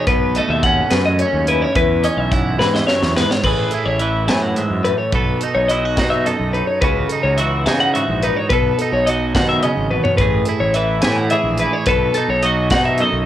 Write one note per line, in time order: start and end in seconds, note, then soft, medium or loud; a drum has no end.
0.00 0.37 B3 medium
0.07 0.39 B1 medium
0.07 0.92 B2 medium
0.07 0.36 B4 medium
0.07 kick loud
0.07 closed hi-hat medium
0.35 1.77 A3 medium
0.35 0.50 D#5 medium
0.35 closed hi-hat medium
0.48 0.81 D#2 medium
0.48 0.63 E5 medium
0.63 1.21 C#4 medium
0.63 0.91 F#5 medium
0.63 kick medium
0.63 closed hi-hat medium
0.90 1.23 F#2 medium
0.90 1.73 F#2 medium
0.90 1.05 B4 medium
0.90 snare loud
0.90 closed hi-hat medium
1.05 1.19 D#5 medium
1.19 2.05 C#4 medium
1.19 1.47 C#5 medium
1.19 closed hi-hat medium
1.33 1.65 D#2 medium
1.47 2.32 E4 soft
1.47 1.62 B4 medium
1.47 closed hi-hat medium
1.62 1.76 C#5 medium
1.75 2.07 E2 medium
1.75 2.60 E2 medium
1.75 2.04 B4 medium
1.75 kick loud
1.75 closed hi-hat medium
2.04 3.42 C#4 medium
2.04 2.18 D#5 medium
2.04 closed hi-hat medium
2.17 2.60 B1 medium
2.17 2.32 E5 medium
2.32 3.42 E4 medium
2.32 2.59 F#5 medium
2.32 kick medium
2.32 closed hi-hat medium
2.59 2.88 E2 medium
2.59 2.81 G#2 medium
2.59 2.74 B4 medium
2.59 snare medium
2.74 2.87 D#5 medium
2.74 snare medium
2.87 3.17 F#2 medium
2.87 3.16 C#5 medium
2.87 snare medium
3.02 3.24 E2 medium
3.02 snare medium
3.17 3.45 G#2 soft
3.17 3.30 B4 medium
3.17 snare medium
3.30 3.44 C#5 medium
3.30 snare medium
3.43 3.65 A1 medium
3.43 4.29 A2 medium
3.43 4.02 G#4 medium
3.43 3.72 B4 medium
3.43 kick medium
3.43 crash medium
3.71 5.11 E4 medium
3.71 3.86 A4 medium
3.71 closed hi-hat medium
3.86 4.29 A1 medium
3.86 4.00 C#5 medium
4.00 5.14 E3 medium
4.00 5.10 B4 soft
4.00 4.28 E5 medium
4.00 closed hi-hat medium
4.28 4.57 F#2 medium
4.28 4.60 A2 medium
4.28 4.42 G#5 medium
4.28 snare medium
4.28 closed hi-hat medium
4.42 4.56 F#5 medium
4.56 4.85 G#2 medium
4.56 4.85 E5 medium
4.56 closed hi-hat soft
4.70 4.92 F#2 medium
4.85 5.14 A2 medium
4.85 4.98 B4 medium
4.85 closed hi-hat medium
4.98 5.13 C#5 medium
5.12 5.34 B1 medium
5.12 6.26 B2 medium
5.12 5.70 A4 soft
5.12 5.41 B4 medium
5.12 kick medium
5.12 closed hi-hat medium
5.41 5.99 D#4 soft
5.41 5.54 A4 medium
5.41 closed hi-hat medium
5.55 5.99 B1 medium
5.55 5.69 C#5 medium
5.68 7.38 F#3 medium
5.68 5.85 E4 soft
5.68 5.96 D#5 medium
5.68 closed hi-hat medium
5.85 6.26 F#4 soft
5.96 6.29 B2 medium
5.96 6.54 D#4 medium
5.96 6.10 F#5 medium
5.96 kick medium
5.96 snare medium
5.96 closed hi-hat medium
6.10 6.25 E5 medium
6.25 6.79 F#2 medium
6.25 6.79 A4 medium
6.25 6.54 D#5 medium
6.25 closed hi-hat medium
6.39 6.61 B1 medium
6.53 6.86 D#4 soft
6.53 6.67 B4 medium
6.53 closed hi-hat medium
6.67 6.81 C#5 medium
6.81 7.03 C#2 medium
6.81 7.39 C#3 medium
6.81 7.39 F#4 medium
6.81 7.09 B4 medium
6.81 kick loud
6.81 closed hi-hat medium
7.09 7.68 D#4 soft
7.09 7.23 A4 medium
7.09 closed hi-hat medium
7.23 7.67 C#2 medium
7.23 7.38 C#5 medium
7.38 8.51 E3 medium
7.38 7.95 F#4 soft
7.38 7.66 E5 medium
7.38 closed hi-hat medium
7.66 7.98 C#3 medium
7.66 8.23 D#4 medium
7.66 7.80 G#5 medium
7.66 snare loud
7.66 closed hi-hat medium
7.80 7.93 F#5 medium
7.94 8.48 G#2 medium
7.94 8.48 F#4 medium
7.94 8.22 E5 medium
7.94 closed hi-hat medium
8.08 8.30 A#1 medium
8.23 8.48 D#4 soft
8.23 8.37 B4 medium
8.23 closed hi-hat medium
8.37 8.49 C#5 medium
8.49 8.72 B1 medium
8.49 9.35 B2 medium
8.49 9.09 A4 medium
8.49 8.79 B4 medium
8.49 kick loud
8.49 closed hi-hat medium
8.79 10.17 D#4 medium
8.79 8.93 A4 medium
8.79 closed hi-hat medium
8.92 9.36 B1 medium
8.92 9.07 C#5 medium
9.06 10.17 F#3 medium
9.06 10.17 F#4 medium
9.06 9.35 D#5 medium
9.06 closed hi-hat medium
9.35 9.67 B2 medium
9.35 9.63 D#3 medium
9.35 9.48 F#5 medium
9.35 kick medium
9.35 snare loud
9.35 closed hi-hat medium
9.49 9.63 E5 medium
9.63 9.92 C#3 medium
9.63 9.91 D#5 medium
9.63 closed hi-hat soft
9.77 9.98 G#1 medium
9.91 10.20 B2 medium
9.91 10.04 B4 medium
9.91 high tom medium
10.04 10.17 C#5 medium
10.04 floor tom medium
10.18 10.40 A1 medium
10.18 11.84 A2 medium
10.18 10.76 G#4 medium
10.18 10.46 B4 medium
10.18 kick loud
10.18 closed hi-hat medium
10.46 11.04 E4 medium
10.46 10.60 A4 medium
10.46 closed hi-hat medium
10.60 11.03 A1 medium
10.60 10.75 C#5 medium
10.74 11.31 E3 medium
10.74 11.32 B4 soft
10.74 11.01 E5 medium
10.74 closed hi-hat medium
11.02 11.34 A2 medium
11.02 11.60 E4 medium
11.02 11.17 G#5 medium
11.02 snare medium
11.02 closed hi-hat medium
11.17 11.31 F#5 medium
11.30 11.84 E3 medium
11.30 11.84 G#4 medium
11.30 11.59 E5 medium
11.30 closed hi-hat medium
11.43 11.65 A#1 medium
11.57 11.85 E4 soft
11.57 11.73 B4 medium
11.57 closed hi-hat medium
11.73 11.86 C#5 medium
11.86 12.08 B1 medium
11.86 12.99 B2 medium
11.86 12.44 A4 medium
11.86 12.15 B4 medium
11.86 kick medium
11.86 closed hi-hat medium
12.14 12.73 D#4 medium
12.14 12.29 A4 medium
12.14 closed hi-hat medium
12.28 12.72 B1 medium
12.28 12.43 C#5 medium
12.43 13.26 F#3 medium
12.43 13.00 F#4 medium
12.43 12.71 D#5 medium
12.43 closed hi-hat medium
12.70 13.02 B2 loud
12.70 13.26 D#4 medium
12.70 12.85 F#5 medium
12.70 kick medium
12.70 snare medium
12.70 closed hi-hat medium
12.85 12.99 E5 medium
12.98 13.26 F#2 medium
12.98 13.26 A4 soft
12.98 13.26 D#5 medium
12.98 closed hi-hat soft
13.12 13.26 B1 medium